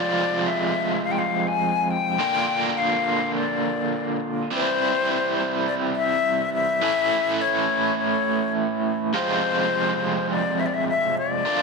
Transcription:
Already playing: F2 C3 F3 G#3 C4 F4 D5
0.46 E5
1.04 F5
1.12 G5
1.18 F5
1.47 G#5
1.91 G5
2.18 A#2 D3 A#3 D4 F4
2.78 F5
3.37 D5
4.51 C3 E3 G3 C4 E4 C5
5.68 D5
5.96 E5
6.54 E5
6.82 A2 E3 A3 C#4 E4
7.41 C#5
7.99 C#5
9.13 F2 C3 F3 G#3 C4 F4 C5
10.31 D5
10.60 E5
10.66 D5
10.74 E5
10.89 E5
11.18 D5
11.45 A#2 D3 A#3 D4 F4

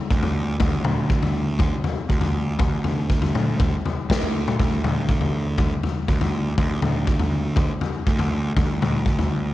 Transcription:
0.11 D2, kick
0.23 floor tom
0.60 D2, kick, floor tom
0.85 D2, floor tom, mid tom
1.10 kick
1.23 floor tom
1.59 kick, floor tom
1.84 floor tom
2.09 D2, kick
2.21 floor tom
2.59 D2, kick, floor tom
2.84 D2, floor tom
3.10 kick
3.22 floor tom
3.35 mid tom
3.60 kick, floor tom
3.86 floor tom
4.10 D2, kick, snare
4.22 floor tom
4.48 mid tom
4.59 D2, kick, floor tom
4.84 D2, floor tom, mid tom
5.09 kick
5.21 floor tom
5.58 kick, floor tom
5.83 floor tom
6.08 D2, kick
6.21 floor tom
6.58 D2, kick, floor tom
6.82 D2, floor tom, mid tom
7.07 kick
7.19 floor tom
7.56 kick, floor tom
7.81 floor tom
8.07 D2, kick
8.19 floor tom
8.57 D2, kick, floor tom
8.81 D2, floor tom, mid tom
9.06 kick
9.19 floor tom

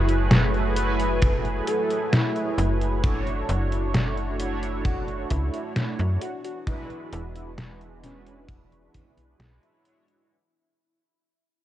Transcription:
Already playing: F#1 F#3 A3 E4 F#4 G#4 B4 C#5 G#5
0.09 closed hi-hat
0.31 snare, closed hi-hat
0.54 closed hi-hat
0.75 A3 E4 F#4 B4 G#5, closed hi-hat
1.00 closed hi-hat
1.22 kick, closed hi-hat
1.45 closed hi-hat
1.67 A4, closed hi-hat
1.91 closed hi-hat
2.13 E4, snare, closed hi-hat
2.36 closed hi-hat
2.58 F#1, closed hi-hat
2.81 closed hi-hat
3.02 A3 D4 E4 F#4 C#5, kick, closed hi-hat
3.27 closed hi-hat
3.49 F#1, closed hi-hat
3.72 closed hi-hat
3.94 snare, closed hi-hat
4.17 closed hi-hat
4.38 A3 D4 E4 F#4 C#5, closed hi-hat
4.63 closed hi-hat
4.85 F#4, kick, closed hi-hat
5.08 closed hi-hat
5.30 C#2 E4, kick, closed hi-hat
5.54 closed hi-hat
5.76 snare, closed hi-hat
5.99 F#2, closed hi-hat
6.21 E3 B3 F#4 G#4, closed hi-hat
6.45 F#4, closed hi-hat
6.66 G#3 D4 E4 F#4 B4, kick, closed hi-hat
6.90 closed hi-hat
7.13 E1 E4, closed hi-hat
7.36 E4, closed hi-hat
7.58 snare, closed hi-hat
7.81 closed hi-hat
8.02 G#3 C#4 D4 E4 F#4 B4, snare, closed hi-hat
8.27 C#4, closed hi-hat
8.48 kick, closed hi-hat
8.72 closed hi-hat
8.94 kick, closed hi-hat
9.17 B1, closed hi-hat
9.39 B1 G#3 D4 E4 F#4 B4, snare, closed hi-hat
9.62 G#3 D4 E4 F#4 C#5, closed hi-hat
9.84 G#3 D4 E4 F#4 C#5, closed hi-hat
10.08 closed hi-hat

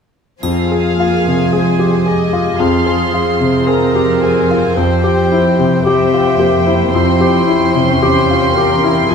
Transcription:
0.42 F2 C4 F4 G#4 F5 G#5, triangle
0.72 G#4
0.99 A#3 F4
1.27 C3
1.53 G#3 G#4 C5
1.79 G4
2.06 G4 G#4 D#5
2.33 F4
2.59 F2 C4 F4 G#4 F5 C6
2.86 G#4
3.14 F4 C5
3.40 C3
3.67 G#4 A#4 A#5
3.95 G4
4.23 G#4 G#5
4.51 F4
4.77 F2 G4 C5 G5
5.04 G4
5.32 E4
5.59 C3
5.84 C4 G4 C5 E5 G5
6.14 F4
6.37 A#3 G4
6.67 E4
6.91 F2 C4 E4 G5 C6
7.21 G4
7.45 C#4 E4
7.75 C3
7.99 E2 G4 C5 G5
8.30 F4
8.54 G4 A#4
8.84 E4
9.08 F2 C4 F4 G#4 G#5

